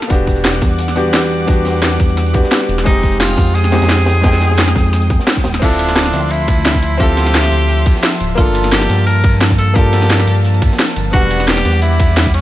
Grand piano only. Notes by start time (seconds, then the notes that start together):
Already playing: A#3 D4 F4 A4
0.08 B3 D4 F#4
0.13 G4
0.95 B3 D4 F#4 G4
1.46 B3 D4 F#4
1.50 G4
2.33 B3 D4 F#4 G4
2.84 G#3 C4 D#4
2.89 G4
3.71 G#3 C4 D#4 G4
4.21 G#3 C4 D#4
4.26 G5
5.59 C4 E4 F4
5.64 A4
6.97 C4 E4 F4
7.02 A4
8.35 A#3 D4 F4
8.40 A4
9.74 A#3 D4 F4
9.78 A4
11.11 B3 D4 F#5
11.16 G3